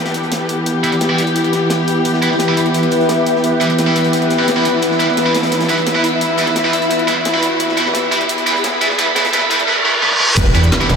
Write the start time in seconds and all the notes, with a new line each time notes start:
Already playing: E3 B3 E4 G4, riser
0.00 B4
0.06 snare, closed hi-hat
0.14 closed hi-hat
0.23 closed hi-hat
0.32 snare, closed hi-hat
0.49 closed hi-hat, open hi-hat
0.64 E5, closed hi-hat
0.84 G3 E4 B4, closed hi-hat
0.92 snare, closed hi-hat
1.01 snare, closed hi-hat
1.09 G3 E4 B4
1.18 closed hi-hat, open hi-hat
1.27 closed hi-hat
1.36 closed hi-hat
1.44 closed hi-hat
1.53 snare, closed hi-hat
1.70 snare, closed hi-hat
1.88 closed hi-hat, open hi-hat
2.05 closed hi-hat
2.14 snare
2.22 G3 E4 B4, closed hi-hat
2.31 snare
2.39 snare, closed hi-hat
2.48 G3 E4 B4
2.57 closed hi-hat, open hi-hat
2.66 closed hi-hat
2.74 closed hi-hat
2.83 closed hi-hat
2.91 closed hi-hat
3.00 closed hi-hat
3.09 snare, closed hi-hat
3.26 closed hi-hat, open hi-hat
3.36 snare
3.44 closed hi-hat
3.61 G3 E4 B4, closed hi-hat
3.69 snare, closed hi-hat
3.78 snare, closed hi-hat
3.87 G3 E4 B4
3.96 closed hi-hat, open hi-hat
4.04 closed hi-hat
4.13 closed hi-hat
4.22 closed hi-hat
4.30 snare, closed hi-hat
4.39 G3 E4 B4
4.48 snare, closed hi-hat
4.56 G3 E4 B4
4.65 closed hi-hat, open hi-hat
4.82 E4, closed hi-hat
4.91 snare
5.00 G3 E4 B4, closed hi-hat
5.08 snare
5.17 snare, closed hi-hat
5.26 G3 E4 B4
5.35 snare, closed hi-hat, open hi-hat
5.42 snare, closed hi-hat
5.52 snare, closed hi-hat
5.61 snare, closed hi-hat
5.69 G3 E4 B4, closed hi-hat
5.77 closed hi-hat
5.87 snare, closed hi-hat
5.95 G3 E4 B4
6.04 closed hi-hat, open hi-hat
6.21 closed hi-hat
6.38 G3 E4 B4, closed hi-hat
6.47 snare, closed hi-hat
6.56 snare, closed hi-hat
6.64 G3 E4 B4
6.73 closed hi-hat, open hi-hat
6.82 closed hi-hat
6.91 closed hi-hat
6.99 closed hi-hat
7.07 G3 E4 B4, snare, closed hi-hat
7.25 snare, closed hi-hat
7.34 G3 E4 B4
7.42 closed hi-hat, open hi-hat
7.60 closed hi-hat
7.69 snare
7.77 G3 E4 B4, closed hi-hat
7.86 snare
7.94 snare, closed hi-hat
8.12 G3 E4 B4, closed hi-hat, open hi-hat
8.21 closed hi-hat
8.29 closed hi-hat
8.38 closed hi-hat
8.46 G3 E4 B4, closed hi-hat
8.56 closed hi-hat
8.64 snare, closed hi-hat
8.81 G3 E4 B4, closed hi-hat, open hi-hat
8.90 snare
8.98 G3 E4 B4, closed hi-hat
9.16 G3 E4 B4, snare, closed hi-hat
9.25 snare, closed hi-hat
9.33 G3 E4 B4, snare, closed hi-hat
9.50 G3 E4 B4, closed hi-hat, open hi-hat
9.59 closed hi-hat
9.68 G3 E4 B4, reverse cymbal
9.85 G3 E4 B4
10.03 G3 E4 B4, high tom
10.11 high tom
10.20 G3 E4 B4, mid tom
10.29 mid tom
10.37 E1 E3 B3 G4, kick, closed hi-hat, crash, impact, cabasa
10.46 snare
10.55 E2 G3 E4 B4, closed hi-hat
10.63 snare, cabasa
10.72 snare, closed hi-hat, cabasa
10.81 G3 E4 B4, cabasa
10.89 E1, snare, closed hi-hat, open hi-hat, cabasa